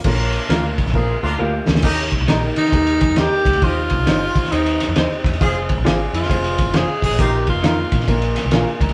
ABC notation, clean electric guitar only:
X:1
M:4/4
L:1/8
Q:"Swing" 1/4=134
K:Eb
V:1 name="Clean electric guitar"
z2 [FBdf] z3 [FBdf] z | z2 [EGBe] z3 [EGBe] z | z2 [EGce] z3 [EGce] z | z2 [FAcf] z3 [FAcf] z |
z2 [EFBf] z3 [FBdf] z |]